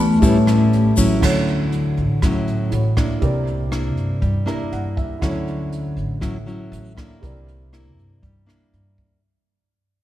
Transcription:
Already playing: E2 E3 G4 B4 D5
0.00 A3
0.19 A1 A2 G3 E4 G4, kick, closed hi-hat, shaker
0.23 C#4 B4 C#5
0.47 G3 C#4 E4, cross-stick, closed hi-hat, shaker
0.73 closed hi-hat
0.97 A1 F#3 C#4 E4, kick, closed hi-hat, shaker
1.19 D2 D3 E4 F#4 A4, kick, cross-stick, crash
1.25 C#5
1.47 closed hi-hat
1.72 closed hi-hat
1.97 A1, closed hi-hat
2.22 A1 A2 F#3 C#4 E4, kick, cross-stick, closed hi-hat
2.47 closed hi-hat
2.70 A1 E4 F#4 A4 C#5, closed hi-hat
2.97 A#3 D4 E4, kick, cross-stick, closed hi-hat
3.19 C2 C3 E4 G4, kick, closed hi-hat
3.23 A#4 D5
3.47 closed hi-hat
3.72 A#3 D4 E4, cross-stick, closed hi-hat
3.97 G2, closed hi-hat
4.22 G2 G3, kick, closed hi-hat
4.46 A#3 D4 E4 G4 A#4 D5 A#5, cross-stick, closed hi-hat
4.72 G2 F#5, closed hi-hat
4.97 E5, kick, closed hi-hat
5.19 D2 D3 F#3 C#4 E4 F#4 A4, kick, cross-stick, closed hi-hat
5.25 C#5
5.48 closed hi-hat
5.72 closed hi-hat
5.97 A1, closed hi-hat
6.21 A1 A2 F#3 C#4 E4, kick, cross-stick, closed hi-hat
6.46 F#3 C#4 E4, closed hi-hat
6.72 A1, closed hi-hat
6.97 A#3 D4 E4, kick, cross-stick, closed hi-hat
7.19 C2 C3 E4 G4 A#4, kick, closed hi-hat
7.25 D5
7.48 closed hi-hat
7.73 A#3 D4 E4, cross-stick, closed hi-hat
7.97 G2, closed hi-hat
8.22 G2 G3, kick, closed hi-hat
8.46 A#3 D4 E4, cross-stick
8.73 G2, closed hi-hat
8.98 kick, closed hi-hat

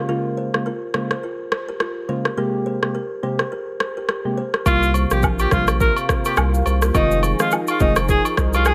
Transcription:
0.08 C#3 G#3 A#3 F4 A#4
0.37 G#4 C5
0.54 C#3 G#3 A#3 F4, cross-stick
0.66 F4 A#4
0.94 C#3 G#3 A#3 F4 G#4 C5, cross-stick
1.11 G#4 C5, cross-stick
1.23 F4 A#4
1.52 G#4 C5, cross-stick
1.69 G4 A#4
1.80 F4 A#4, cross-stick
2.09 C#3 G#3 A#3 F4 G#4 C5
2.25 G4 A#4, cross-stick
2.37 C3 G#3 A#3 G4 A#4
2.66 G#4 C5
2.82 C3 G#3 A#3 G4, cross-stick
2.95 G4 A#4
3.23 C3 G#3 A#3 G4 G#4 C5
3.39 G#4 C5, cross-stick
3.52 G4 A#4
3.80 G#4 C5, cross-stick
3.97 G4 A#4
4.09 G4 A#4, cross-stick
4.25 C3 G#3 A#3 G4
4.38 G#4 C5
4.54 G4 A#4, cross-stick
4.66 C2 C3 G3 A#3 F4 G4 A#4, kick, high agogo, shaker
4.83 shaker
4.94 G#4 C5, high agogo, shaker
5.11 A#1 C3 G3 A#3 F4 G4, cross-stick, shaker
5.23 G4 A#4, kick, low woodblock, shaker
5.39 G4, high agogo, shaker
5.51 A#1 C3 G3 A#3 F4 G#4 C5, kick, cross-stick, shaker
5.67 G#4 C5, cross-stick, high agogo, shaker
5.80 G4 A#4, kick, shaker
5.96 high agogo, shaker
6.09 G#4 C5, kick, cross-stick, shaker
6.25 G4 A#4, high agogo, shaker
6.37 C2 G4 A#4, cross-stick, low woodblock, shaker
6.54 shaker
6.66 C2 G#4 C5, high agogo, shaker
6.82 G4 A#4, cross-stick, shaker
6.94 F1 D#3 F3 G#3 C4 D#4 F4 G#4 A#4, kick, high agogo, shaker
7.11 shaker
7.23 G#4 C5, high agogo, shaker
7.39 D#3 G#3 C4 F4, cross-stick, shaker
7.51 F4 A#4, low woodblock, shaker
7.67 F4, high agogo, shaker
7.80 F1 D#3 G#3 C4 D#4 F4 G#4 C5, kick, shaker
7.96 G#4 C5, cross-stick, high agogo, shaker
8.09 F4 G#4 A#4, kick, shaker
8.25 high agogo, shaker
8.37 C2 G#4 C5, kick, cross-stick, shaker
8.53 F4 G4 A#4, high agogo, shaker
8.65 F4 G#4 A#4, cross-stick, low woodblock, shaker

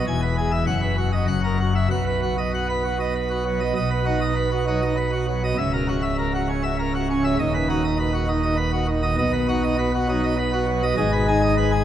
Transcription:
0.07 E1 E2 G#5
0.22 B4
0.38 G#4
0.52 E5
0.67 F#1 F#2 F#5
0.82 B4
0.97 F#4
1.13 D#5
1.27 F#1 F#2 F#5
1.44 A#4
1.60 F#4
1.76 E5
1.91 B1 B2 F#5
2.07 B4
2.22 F#4
2.38 D#5
2.54 F#5
2.69 B3 B4
2.84 F#4
3.00 D#5
3.15 B4
3.30 F#4
3.46 F#3
3.60 D#5
3.75 B1 B2 D#5
3.91 B4
4.05 D#4 F#4
4.21 D#5
4.36 B4
4.51 F#4
4.67 F#3 D#4
4.82 D#5
4.97 B4
5.12 F#4
5.28 F#3
5.44 D#5
5.58 C#1 C#2 E5
5.73 A#4
5.88 F#4
6.02 E5
6.19 A#4
6.34 F#4
6.49 C#4
6.63 E5
6.79 A#4
6.95 F#4
7.10 C#3 C#4
7.24 E5
7.39 D#1 D#2 D#5
7.54 B4
7.69 D#4 F#4
7.84 D#5
7.99 B4
8.14 F#4
8.28 D#3 D#4
8.43 D#5
8.57 B4
8.73 F#4
8.88 D#3
9.03 D#5
9.18 B1 B2 D#5
9.33 B4
9.48 D#4 F#4
9.64 D#5
9.79 B4
9.95 F#4
10.08 F#3 D#4
10.24 D#5
10.39 B4
10.53 F#4
10.68 F#3
10.83 D#5
10.97 G#1 G#2 D#5
11.13 B4
11.27 D#4 G#4
11.42 D#5
11.57 B4
11.72 G#4

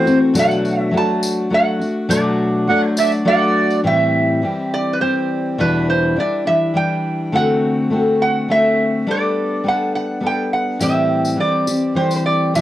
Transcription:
Already playing: C5
0.05 A3 C4 F#4, tambourine
0.34 B2 F#3 A3 D4 F#4, tambourine
0.40 F#5
0.51 tambourine
0.65 tambourine
0.81 E5
0.91 F#3 A3 D4 F#4
0.98 A5
1.23 tambourine
1.50 F#3 A3 D4 F#4
1.54 F#5
1.79 A3 D4 F#4, tambourine
2.09 B2 F#3 A3 D4 F#4 D5, tambourine
2.67 F#3 A3 D4 F#4 F#5
2.97 D5 E5, tambourine
3.12 tambourine
3.25 F#3 A3 D4 F#4 D5 F#5
3.70 tambourine
3.84 A2 E3 G3 C4 G4 E5
4.42 E3 G3 C4 G4
4.74 D5
4.93 B4
5.00 E3 G3 C4 G4 C5
5.58 E2 B2 E3 G3 D4 E4 B4
5.90 C5
6.16 E3 G3 D4 E4 D5
6.46 E3 G3 D4 E4 E5
6.74 E3 G3 D4 E4 G5
7.32 D3 A3 C4 F#4 F#5
7.90 D3 A3 C4 F#4
8.22 F#5
8.48 D3 A3 C4 F#4 E5
9.07 G3 B3 D4 A4
9.11 D5
9.64 G3 B3 D4 A4
9.68 F#5
9.95 F#5
10.20 G3 B3 D4 A4
10.26 G5
10.53 F#5
10.79 A2 E3 G3 C4 G4 E5, tambourine
11.25 tambourine
11.36 E3 G3 C4 G4
11.40 D5
11.67 G3 C4 G4, tambourine
11.95 E3 G3 C4 G4 C5
12.11 tambourine
12.16 C5
12.26 D5
12.54 E2 B2 E3 G3 D4 E4 E5, tambourine

